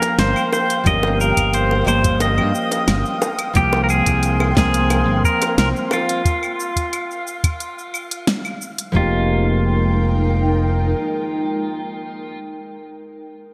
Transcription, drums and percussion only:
0.02 closed hi-hat medium
0.02 high bongo medium
0.02 cabasa soft
0.19 snare medium
0.19 closed hi-hat soft
0.19 cabasa soft
0.36 cabasa soft
0.36 claves medium
0.53 high bongo medium
0.53 cabasa medium
0.70 closed hi-hat medium
0.70 cabasa soft
0.86 kick loud
0.86 closed hi-hat soft
0.86 cabasa soft
0.86 claves medium
1.03 high bongo loud
1.21 cabasa medium
1.37 kick medium
1.37 closed hi-hat medium
1.37 cabasa soft
1.37 claves medium
1.53 closed hi-hat soft
1.53 cabasa soft
1.71 high bongo medium
1.87 cabasa medium
1.87 claves medium
2.04 kick loud
2.04 closed hi-hat medium
2.04 cabasa soft
2.20 closed hi-hat soft
2.20 high bongo medium
2.20 cabasa soft
2.38 claves medium
2.55 cabasa medium
2.71 closed hi-hat medium
2.71 high bongo medium
2.71 cabasa soft
2.88 snare medium
2.88 closed hi-hat soft
2.88 cabasa soft
2.88 claves medium
3.06 cabasa soft
3.22 high bongo medium
3.22 cabasa medium
3.39 closed hi-hat medium
3.39 cabasa soft
3.39 claves medium
3.55 kick loud
3.55 closed hi-hat soft
3.55 cabasa soft
3.73 high bongo medium
3.89 cabasa medium
3.89 claves medium
4.06 kick medium
4.06 closed hi-hat medium
4.06 cabasa soft
4.23 closed hi-hat soft
4.23 cabasa soft
4.40 high bongo medium
4.40 claves medium
4.57 kick loud
4.57 snare medium
4.57 cabasa medium
4.74 closed hi-hat medium
4.74 cabasa soft
4.90 closed hi-hat soft
4.90 high bongo medium
4.90 cabasa soft
4.90 claves medium
5.24 kick loud
5.24 cabasa medium
5.42 closed hi-hat medium
5.42 high bongo medium
5.42 cabasa soft
5.42 claves medium
5.58 snare medium
5.58 closed hi-hat soft
5.58 cabasa soft
5.76 cabasa soft
5.91 high bongo medium
5.91 cabasa medium
5.91 claves medium
6.09 closed hi-hat medium
6.09 cabasa soft
6.25 kick loud
6.25 closed hi-hat soft
6.25 cabasa soft
6.43 cabasa soft
6.43 claves medium
6.60 cabasa medium
6.76 kick medium
6.76 closed hi-hat medium
6.76 cabasa soft
6.93 closed hi-hat soft
6.93 cabasa soft
6.93 claves medium
7.11 cabasa soft
7.27 cabasa medium
7.44 kick loud
7.44 closed hi-hat medium
7.44 cabasa soft
7.44 claves medium
7.60 closed hi-hat soft
7.60 cabasa soft
7.79 cabasa soft
7.94 cabasa medium
7.94 claves medium
8.11 closed hi-hat medium
8.11 cabasa soft
8.27 snare medium
8.27 closed hi-hat soft
8.27 cabasa soft
8.45 cabasa soft
8.45 claves medium
8.62 cabasa medium
8.78 closed hi-hat medium
8.78 cabasa soft
8.95 kick loud

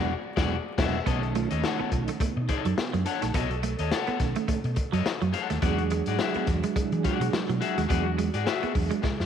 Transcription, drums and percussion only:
0.37 kick loud
0.37 snare loud
0.78 kick loud
0.78 snare loud
0.78 crash medium
1.06 kick loud
1.06 closed hi-hat medium
1.23 closed hi-hat soft
1.35 closed hi-hat medium
1.51 closed hi-hat medium
1.64 snare loud
1.92 kick medium
1.92 closed hi-hat medium
2.08 closed hi-hat medium
2.20 kick loud
2.20 closed hi-hat medium
2.49 kick medium
2.49 closed hi-hat medium
2.65 closed hi-hat medium
2.78 snare loud
2.94 closed hi-hat soft
3.06 closed hi-hat medium
3.22 snare soft
3.22 closed hi-hat medium
3.34 kick loud
3.34 closed hi-hat medium
3.51 closed hi-hat soft
3.63 closed hi-hat medium
3.79 closed hi-hat medium
3.91 snare loud
4.07 closed hi-hat soft
4.20 kick medium
4.20 snare soft
4.20 closed hi-hat medium
4.36 closed hi-hat medium
4.48 kick medium
4.48 closed hi-hat medium
4.64 closed hi-hat soft
4.76 kick medium
4.76 closed hi-hat medium
4.93 closed hi-hat medium
5.06 snare loud
5.22 closed hi-hat soft
5.33 closed hi-hat medium
5.50 snare soft
5.50 closed hi-hat medium
5.62 kick loud
5.62 closed hi-hat medium
5.78 closed hi-hat soft
5.90 closed hi-hat medium
6.06 closed hi-hat medium
6.19 snare loud
6.34 closed hi-hat soft
6.47 kick medium
6.47 snare soft
6.47 closed hi-hat medium
6.63 closed hi-hat medium
6.76 kick loud
6.76 closed hi-hat medium
6.92 closed hi-hat soft
7.04 kick medium
7.04 closed hi-hat medium
7.21 closed hi-hat medium
7.33 snare loud
7.49 closed hi-hat soft
7.62 closed hi-hat medium
7.78 snare soft
7.78 closed hi-hat medium
7.90 kick loud
7.90 closed hi-hat medium
8.19 closed hi-hat medium
8.34 closed hi-hat medium
8.47 snare loud
8.63 closed hi-hat soft
8.75 kick medium
8.75 open hi-hat medium
8.91 closed hi-hat medium
9.04 kick loud
9.04 snare medium
9.20 snare medium

